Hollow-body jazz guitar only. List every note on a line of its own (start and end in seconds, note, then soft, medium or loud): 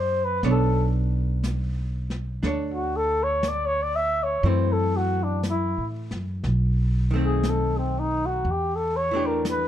0.00 0.44 A#3 soft
0.00 0.44 E4 soft
0.00 0.43 A4 soft
0.44 4.44 B3 soft
0.44 2.41 D4 soft
0.44 2.43 A4 soft
0.44 2.45 C#5 soft
2.43 4.43 D4 soft
2.43 4.44 A4 soft
2.43 4.45 C#5 soft
4.44 6.44 E3 soft
4.44 6.45 A3 soft
4.44 6.45 C4 medium
7.11 8.45 D#3 medium
7.11 8.46 A3 medium
7.16 8.47 C4 medium
9.11 9.68 E3 medium
9.11 9.68 A3 medium
9.11 9.68 D4 medium
9.17 9.68 G4 medium